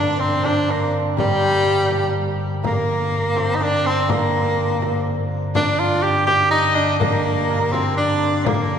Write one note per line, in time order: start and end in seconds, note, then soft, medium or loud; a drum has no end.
0.00 2.62 G2 medium
0.00 2.61 D3 medium
0.00 0.68 A#3 medium
0.00 0.17 C4 medium
0.00 0.22 D4 medium
0.00 0.43 D4 medium
0.00 0.20 D5 medium
0.18 3.35 C4 medium
0.18 0.46 C4 medium
0.18 0.70 C5 medium
0.43 3.60 D4 medium
0.43 0.73 D4 medium
0.43 frame drum medium
0.68 2.63 A#3 medium
0.68 0.95 A#3 medium
0.68 0.93 A#4 medium
1.17 5.93 G3 medium
1.17 2.12 G3 loud
1.17 2.11 G4 medium
1.17 frame drum medium
1.67 frame drum soft
1.91 frame drum medium
2.40 frame drum soft
2.63 8.44 G2 medium
2.63 8.45 D3 medium
2.63 4.08 A#3 medium
2.63 3.57 A#3 medium
2.63 3.37 A#4 medium
2.63 frame drum medium
2.89 frame drum soft
3.35 3.85 C4 medium
3.35 3.62 C5 medium
3.35 frame drum medium
3.56 3.65 D#4 medium
3.60 5.55 D4 medium
3.60 3.88 D4 loud
3.60 3.84 D5 medium
3.60 frame drum soft
3.85 4.01 C4 medium
3.85 4.12 C4 medium
3.85 4.07 C5 medium
4.01 7.74 C4 soft
4.08 7.01 A#3 medium
4.08 5.07 A#3 medium
4.08 5.02 A#4 medium
4.08 frame drum medium
4.34 frame drum soft
4.82 frame drum medium
5.07 frame drum soft
5.54 6.59 D4 medium
5.54 5.81 D4 medium
5.54 6.05 D5 medium
5.54 frame drum medium
5.80 6.04 F4 medium
5.80 frame drum soft
6.02 6.26 G4 loud
6.02 6.28 G4 medium
6.02 6.51 G5 medium
6.27 6.50 G4 loud
6.27 6.35 G4 medium
6.27 frame drum medium
6.35 6.40 G4 medium
6.41 8.79 G4 medium
6.51 6.77 D#4 loud
6.51 6.83 D#4 medium
6.51 6.97 D#5 medium
6.51 frame drum soft
6.75 6.99 D4 medium
6.75 7.98 D4 medium
6.99 7.74 A#3 medium
6.99 7.49 A#3 medium
6.99 8.00 A#4 medium
6.99 frame drum medium
7.26 frame drum soft
7.49 8.46 A#3 medium
7.73 7.97 C4 medium
7.73 8.23 C4 medium
7.73 frame drum medium
7.97 8.47 D4 medium
7.97 8.79 D4 medium
7.97 8.48 D5 medium
8.23 8.79 C4 medium
8.46 8.79 G2 medium
8.46 8.79 D3 medium
8.46 8.79 A#3 medium
8.46 8.79 A#4 medium
8.46 frame drum medium
8.70 frame drum soft